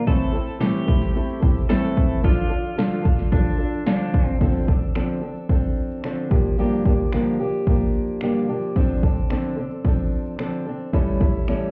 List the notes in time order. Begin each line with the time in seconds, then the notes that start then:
0.06 A2 E3 A3 C4 E4 A4, kick, shaker
0.20 shaker
0.34 A3 C4 E4 A4
0.48 shaker
0.60 A2 E3 A3 C4 E4 G4 A4, snare, shaker
0.75 shaker
0.87 A3 C4 E4 A4, kick
1.01 snare, shaker
1.15 A3 C4 E4 A4, shaker
1.29 shaker
1.42 A3 C4 E4 A4, kick
1.57 shaker
1.69 A2 E3 A3 C4 E4 A4, snare, shaker
1.83 shaker
1.97 kick
2.11 shaker
2.23 D3 F3 D4 F4 A4, kick, shaker
2.37 shaker
2.50 D4 F4 A4, shaker
2.65 shaker
2.77 D3 F3 D4 F4 A4, snare, shaker
2.92 shaker
3.04 D4 F4 A4, kick, shaker
3.19 snare, shaker
3.32 F3 D4 F4 A4, kick, shaker
3.47 shaker
3.59 D4 F4 A4, shaker
3.73 shaker
3.86 D3 F3 D4 F4 A4, snare, shaker
4.00 shaker
4.14 kick, shaker
4.28 shaker
4.40 D3 F3 C4 D4 A4, kick, shaker
4.54 shaker
4.67 C4 D4 A4, kick
4.82 shaker
4.95 D3 F3 C4 D4 A4, finger snap, shaker
5.09 shaker
5.21 C4 D4 A4
5.36 shaker
5.49 F3 C4 D4 A4, kick, shaker
5.63 shaker
5.76 shaker
5.91 shaker
6.04 D3 F3 C4 D4 A4, finger snap, shaker
6.17 shaker
6.31 F3 A#3 D4 G4, kick
6.44 shaker
6.58 G2 D3 F3 A#3 D4 G4, shaker
6.71 shaker
6.85 F3 A#3 D4 G4, kick
6.99 shaker
7.13 G2 D3 F3 A#3 D4 G4, finger snap, shaker
7.26 shaker
7.40 F3 A#3 D4 G4
7.53 shaker
7.67 F3 A#3 D4 G4, kick, shaker
7.81 shaker
7.93 shaker
8.08 shaker
8.21 G2 D3 F3 A#3 D4 G4, finger snap, shaker
8.34 shaker
8.49 F3 A#3 D4 G4
8.62 shaker
8.76 D3 F3 C4 D4 A4, kick, shaker
8.89 shaker
9.03 C4 D4 A4, kick
9.17 shaker
9.30 D3 F3 C4 D4 A4, finger snap, shaker
9.44 shaker
9.57 C4 D4 A4
9.71 shaker
9.84 F3 C4 D4 A4, kick, shaker
9.99 shaker
10.11 shaker
10.26 shaker
10.39 D3 F3 C4 D4 A4, finger snap, shaker
10.52 shaker
10.67 C4 D4 A4
10.80 shaker
10.93 A2 E3 G3 C#4 E4 A4, kick, shaker
11.07 shaker
11.21 G3 C#4 E4 A4, kick, shaker
11.35 shaker
11.48 A2 E3 G3 C#4 E4 A4, finger snap, shaker
11.61 shaker